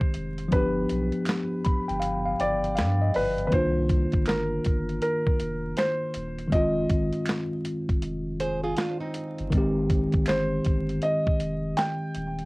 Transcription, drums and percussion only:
0.01 kick
0.14 closed hi-hat
0.38 closed hi-hat
0.52 kick, closed hi-hat
0.89 closed hi-hat
1.12 closed hi-hat
1.25 finger snap, snare, closed hi-hat
1.65 kick, closed hi-hat
1.89 closed hi-hat
2.02 closed hi-hat
2.40 closed hi-hat
2.64 closed hi-hat
2.77 finger snap, snare, closed hi-hat
3.14 open hi-hat
3.38 closed hi-hat
3.52 kick, closed hi-hat
3.89 kick, closed hi-hat
4.12 kick, closed hi-hat
4.26 finger snap, snare, closed hi-hat
4.64 kick, closed hi-hat
4.89 closed hi-hat
5.02 closed hi-hat
5.27 kick
5.40 closed hi-hat
5.77 finger snap, snare, closed hi-hat
6.14 closed hi-hat
6.38 closed hi-hat
6.52 kick, closed hi-hat
6.90 kick, closed hi-hat
7.13 closed hi-hat
7.26 finger snap, snare, closed hi-hat
7.65 closed hi-hat
7.89 kick, closed hi-hat
8.02 closed hi-hat
8.40 closed hi-hat
8.77 finger snap, snare, closed hi-hat
9.14 closed hi-hat
9.38 closed hi-hat
9.52 kick, closed hi-hat
9.90 kick, closed hi-hat
10.12 kick, closed hi-hat
10.26 finger snap, snare, closed hi-hat
10.65 kick, closed hi-hat
10.89 closed hi-hat
11.02 closed hi-hat
11.27 kick
11.40 closed hi-hat
11.77 finger snap, snare, closed hi-hat
12.14 closed hi-hat
12.39 closed hi-hat

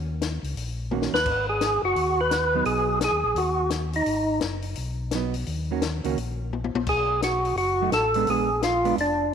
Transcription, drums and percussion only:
0.22 snare, closed hi-hat
0.44 open hi-hat
0.57 open hi-hat
0.91 high tom
1.02 snare
1.15 snare
1.26 kick, crash
1.61 snare, closed hi-hat
1.96 open hi-hat
2.31 snare, closed hi-hat
2.65 open hi-hat
3.01 snare, closed hi-hat
3.36 open hi-hat
3.70 snare, closed hi-hat
3.93 open hi-hat
4.06 open hi-hat
4.41 snare, closed hi-hat
4.62 open hi-hat
4.76 open hi-hat
5.11 snare, closed hi-hat
5.34 open hi-hat
5.46 open hi-hat
5.82 snare, closed hi-hat
6.04 open hi-hat
6.18 open hi-hat
6.53 high tom
6.64 high tom
6.75 high tom
6.87 kick, crash
7.22 snare, closed hi-hat
7.45 open hi-hat
7.57 open hi-hat
7.92 snare, closed hi-hat
8.14 open hi-hat
8.27 open hi-hat
8.62 snare, closed hi-hat
8.85 open hi-hat
8.98 open hi-hat

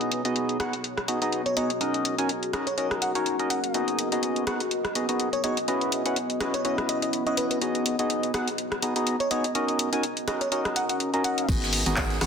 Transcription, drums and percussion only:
0.01 closed hi-hat
0.12 closed hi-hat
0.25 closed hi-hat
0.36 closed hi-hat
0.49 closed hi-hat
0.60 cross-stick, closed hi-hat
0.73 closed hi-hat
0.84 closed hi-hat
0.98 cross-stick, closed hi-hat
1.08 closed hi-hat
1.22 closed hi-hat
1.32 closed hi-hat
1.46 closed hi-hat
1.57 closed hi-hat
1.70 closed hi-hat
1.81 closed hi-hat
1.94 closed hi-hat
2.05 closed hi-hat
2.19 closed hi-hat
2.29 closed hi-hat
2.43 closed hi-hat
2.53 cross-stick, closed hi-hat
2.67 closed hi-hat
2.78 closed hi-hat
2.91 cross-stick, closed hi-hat
3.02 closed hi-hat
3.15 closed hi-hat
3.26 closed hi-hat
3.39 closed hi-hat
3.50 closed hi-hat
3.64 closed hi-hat
3.74 closed hi-hat
3.88 closed hi-hat
3.99 closed hi-hat
4.12 closed hi-hat
4.23 closed hi-hat
4.36 closed hi-hat
4.47 cross-stick, closed hi-hat
4.60 closed hi-hat
4.71 closed hi-hat
4.85 cross-stick, closed hi-hat
4.95 closed hi-hat
5.09 closed hi-hat
5.20 closed hi-hat
5.33 closed hi-hat
5.44 closed hi-hat
5.57 closed hi-hat
5.68 closed hi-hat
5.81 closed hi-hat
5.92 closed hi-hat
6.06 closed hi-hat
6.16 closed hi-hat
6.30 closed hi-hat
6.41 cross-stick, closed hi-hat
6.54 closed hi-hat
6.65 closed hi-hat
6.78 cross-stick, closed hi-hat
6.89 closed hi-hat
7.02 closed hi-hat
7.13 closed hi-hat
7.27 closed hi-hat
7.37 closed hi-hat
7.51 closed hi-hat
7.62 closed hi-hat
7.75 closed hi-hat
7.86 closed hi-hat
7.99 closed hi-hat
8.10 closed hi-hat
8.23 closed hi-hat
8.34 cross-stick, closed hi-hat
8.48 closed hi-hat
8.58 closed hi-hat
8.72 cross-stick, closed hi-hat
8.82 closed hi-hat
8.96 closed hi-hat
9.07 closed hi-hat
9.20 closed hi-hat
9.31 closed hi-hat
9.44 closed hi-hat
9.55 closed hi-hat
9.68 closed hi-hat
9.79 closed hi-hat
9.93 closed hi-hat
10.03 closed hi-hat
10.17 closed hi-hat
10.28 cross-stick, closed hi-hat
10.41 closed hi-hat
10.52 closed hi-hat
10.65 cross-stick, closed hi-hat
10.76 closed hi-hat
10.89 closed hi-hat
11.00 closed hi-hat
11.14 closed hi-hat
11.24 closed hi-hat
11.38 closed hi-hat
11.49 kick, closed hi-hat, crash, tambourine
11.62 snare, closed hi-hat
11.73 open hi-hat, ride, tambourine
11.86 closed hi-hat
11.96 kick, snare, clap, closed hi-hat, tambourine
12.10 snare, closed hi-hat
12.21 cross-stick, open hi-hat, ride, tambourine

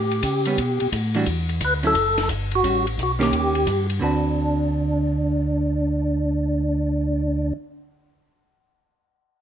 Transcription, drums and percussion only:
0.11 ride
0.23 kick, hi-hat pedal, ride
0.45 ride
0.58 kick, ride
0.80 ride
0.92 kick, hi-hat pedal, ride
1.14 ride
1.26 kick, ride
1.49 ride
1.61 kick, hi-hat pedal, ride
1.83 ride
1.95 kick, ride
2.18 snare, ride
2.29 kick, hi-hat pedal, ride
2.51 ride
2.64 kick, ride
2.87 ride
2.98 kick, hi-hat pedal, ride
3.21 snare, ride
3.32 kick, ride
3.55 ride
3.67 kick, hi-hat pedal, ride
3.90 ride

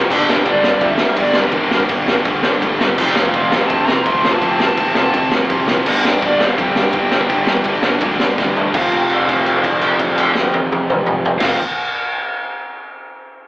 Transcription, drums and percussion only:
0.02 kick
0.10 kick, crash
0.29 snare
0.37 kick
0.46 kick, ride
0.64 snare
0.81 kick, ride
0.97 snare
1.16 kick, ride
1.33 snare
1.44 kick
1.52 kick, ride
1.71 snare
1.80 kick
1.89 kick, ride
2.08 snare
2.25 kick, ride
2.43 snare
2.62 kick, ride
2.80 snare
2.89 kick
2.98 kick, crash
3.15 snare
3.25 kick
3.34 kick, ride
3.52 snare
3.70 kick, ride
3.88 snare
4.06 kick, ride
4.24 snare
4.33 kick
4.42 kick, ride
4.60 snare
4.69 kick
4.77 kick, ride
4.95 snare
5.14 kick, ride
5.31 snare
5.50 kick, ride
5.67 snare
5.77 kick
5.86 kick, crash
6.05 snare
6.14 kick
6.22 kick, ride
6.40 snare
6.58 kick, ride
6.75 snare
6.93 kick, ride
7.11 snare
7.21 kick
7.29 kick, ride
7.47 snare
7.57 kick
7.64 kick, ride
7.82 snare
8.01 kick, ride
8.19 snare
8.38 kick, snare
8.56 floor tom
8.74 kick, crash
8.92 kick, crash
9.10 crash
9.28 kick, crash
9.46 crash
9.64 kick, crash
9.81 crash
9.99 kick, crash
10.18 crash
10.35 snare
10.53 high tom
10.72 high tom
10.90 mid tom
11.06 mid tom
11.25 floor tom
11.40 kick, snare, crash

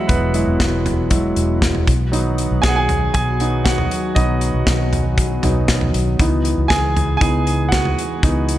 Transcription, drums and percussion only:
0.09 kick, closed hi-hat
0.34 closed hi-hat
0.60 kick, snare, closed hi-hat
0.86 closed hi-hat, floor tom
1.11 kick, closed hi-hat
1.36 closed hi-hat
1.62 kick, snare, closed hi-hat
1.75 floor tom
1.88 kick, closed hi-hat
2.13 closed hi-hat
2.38 closed hi-hat
2.63 kick, snare, closed hi-hat
2.89 closed hi-hat, floor tom
3.14 kick, closed hi-hat
3.40 closed hi-hat
3.66 kick, snare, closed hi-hat
3.78 floor tom
3.91 closed hi-hat
4.16 kick, closed hi-hat
4.41 closed hi-hat
4.67 kick, snare, closed hi-hat
4.93 closed hi-hat, floor tom
5.18 kick, closed hi-hat
5.43 closed hi-hat, floor tom
5.68 kick, snare, closed hi-hat
5.81 floor tom
5.94 closed hi-hat
6.20 kick, closed hi-hat
6.45 closed hi-hat
6.70 kick, snare, closed hi-hat
6.97 closed hi-hat, floor tom
7.21 kick, closed hi-hat
7.47 closed hi-hat
7.72 kick, snare, closed hi-hat
7.85 floor tom
7.99 closed hi-hat
8.23 kick, closed hi-hat
8.49 closed hi-hat

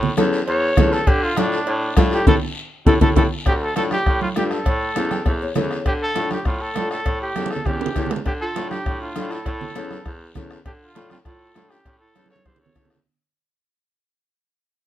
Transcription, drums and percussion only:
0.03 low conga
0.17 bombo rim, cowbell, high conga, short guiro
0.33 short guiro
0.47 cowbell, long guiro
0.77 bombo low, bombo rim, cowbell, high conga, low conga, low timbale, short guiro
0.92 short guiro
1.07 bombo low, cowbell, long guiro
1.37 bombo rim, cowbell, high conga, short guiro
1.52 short guiro
1.67 cowbell, long guiro
1.97 bombo low, bombo rim, cowbell, high conga, low timbale, short guiro
2.11 short guiro
2.27 bombo low, low conga, high timbale, long guiro
2.86 bombo low, low conga, high timbale, long guiro
3.01 bombo low, low conga, high timbale, long guiro
3.16 bombo low, low conga, high timbale, long guiro
3.46 bombo low, bombo rim, cowbell, high conga, long guiro
3.76 bombo rim, cowbell, high conga, short guiro
3.91 bombo rim, high conga, short guiro
4.06 bombo low, bombo rim, cowbell, high conga, long guiro
4.21 high conga
4.36 bombo rim, cowbell, high conga, low timbale, short guiro
4.51 bombo rim, short guiro
4.65 bombo low, bombo rim, cowbell, high conga, long guiro
4.96 bombo rim, cowbell, high conga, short guiro
5.11 bombo rim, high conga, short guiro
5.26 bombo low, bombo rim, cowbell, high conga, long guiro
5.55 bombo rim, cowbell, high conga, low conga, low timbale, short guiro
5.71 bombo rim, short guiro
5.86 bombo low, bombo rim, cowbell, high conga, long guiro
6.15 bombo rim, cowbell, high conga, short guiro
6.31 bombo rim, high conga, short guiro
6.45 bombo low, bombo rim, cowbell, high conga, long guiro
6.75 bombo rim, cowbell, high conga, low timbale, short guiro
6.91 bombo rim, short guiro
7.06 bombo low, bombo rim, cowbell, high conga, long guiro
7.36 bombo rim, cowbell, high conga, short guiro
7.46 high conga
7.50 bombo rim, short guiro
7.56 low conga
7.65 bombo low, bombo rim, cowbell, low conga, long guiro
7.81 high timbale
7.86 low conga
7.95 bombo low, bombo rim, cowbell, low conga, high timbale, short guiro
8.06 low conga
8.11 bombo rim, low timbale, short guiro
8.16 low conga
8.26 bombo low, bombo rim, cowbell, high conga, long guiro
8.56 bombo rim, cowbell, high conga, short guiro
8.71 bombo rim, high conga, short guiro
8.86 bombo low, bombo rim, cowbell, high conga, long guiro
9.16 bombo rim, cowbell, high conga, short guiro
9.31 bombo rim, short guiro
9.46 bombo low, bombo rim, cowbell, high conga, long guiro
9.61 low conga
9.75 bombo rim, cowbell, high conga, short guiro
9.91 bombo rim, high conga, short guiro
10.06 bombo low, bombo rim, cowbell, high conga, long guiro
10.35 bombo low, bombo rim, cowbell, high conga, low conga, short guiro
10.51 bombo rim, short guiro
10.65 bombo low, bombo rim, cowbell, high conga, long guiro
10.95 bombo rim, cowbell, high conga, short guiro
11.10 bombo rim, high conga, short guiro
11.25 bombo low, bombo rim, cowbell, high conga, long guiro
11.55 bombo rim, cowbell, high conga, low timbale, short guiro
11.71 bombo rim, short guiro
11.85 bombo low, bombo rim, cowbell, high conga, long guiro
12.15 bombo rim, cowbell, high conga, short guiro
12.26 high conga
12.30 bombo rim, short guiro
12.36 high conga
12.45 bombo low, bombo rim, cowbell, high conga, long guiro
12.56 low conga
12.66 low conga
12.76 bombo low, bombo rim, cowbell, low conga, short guiro
12.85 low conga
12.90 bombo rim, short guiro
12.96 low conga

